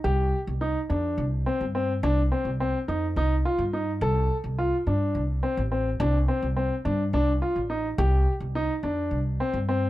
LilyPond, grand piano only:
\new Staff \with { instrumentName = "Grand piano" } { \time 7/8 \key c \dorian \tempo 4 = 106 g'4 ees'8 d'4 c'8 c'8 | d'8 c'8 c'8 ees'8 ees'8 f'8 ees'8 | a'4 f'8 d'4 c'8 c'8 | d'8 c'8 c'8 d'8 d'8 f'8 ees'8 |
g'4 ees'8 d'4 c'8 c'8 | }